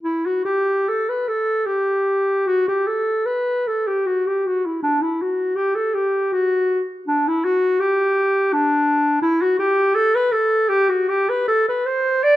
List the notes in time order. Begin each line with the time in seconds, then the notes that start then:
0.03 E4
0.26 F#4
0.45 G4
0.89 A4
1.09 B4
1.28 A4
1.66 G4
2.47 F#4
2.68 G4
2.87 A4
3.26 B4
3.67 A4
3.87 G4
4.06 F#4
4.27 G4
4.47 F#4
4.66 E4
4.83 D4
5.02 E4
5.22 F#4
5.56 G4
5.75 A4
5.94 G4
6.33 F#4
7.08 D4
7.28 E4
7.44 F#4
7.80 G4
8.53 D4
9.22 E4
9.42 F#4
9.59 G4
9.95 A4
10.15 B4
10.32 A4
10.69 G4
10.89 F#4
11.09 G4
11.29 B4
11.48 A4
11.68 B4
11.86 C5
12.23 D5